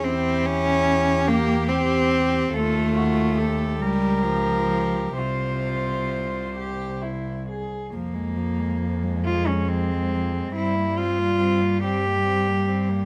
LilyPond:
<<
  \new Staff \with { instrumentName = "Cello" } { \time 6/8 \key f \minor \tempo 4. = 46 e'4. g'4. | a'8 f'8 a'8 bes'4. | c''2~ c''16 r8. | r4. f'16 des'16 c'4 |
e'8 f'4 g'4. | }
  \new Staff \with { instrumentName = "Cello" } { \time 6/8 \key f \minor g'2. | f'8 ges'8 g'2 | f'4. g'8 e'8 aes'8 | bes4. aes4. |
g2. | }
  \new Staff \with { instrumentName = "Cello" } { \time 6/8 \key f \minor c'8 des'4 bes8 c'4 | a4. g8 f4 | c2~ c8 r8 | f16 aes16 f16 aes16 f16 aes16 f16 aes16 f16 aes16 f16 aes16 |
c'16 bes16 c'16 bes16 c'16 bes16 c'16 bes16 c'16 bes16 c'16 bes16 | }
  \new Staff \with { instrumentName = "Cello" } { \clef bass \time 6/8 \key f \minor e,2. | ees,4. des,4. | c,2~ c,8. r16 | f,2. |
g,2. | }
>>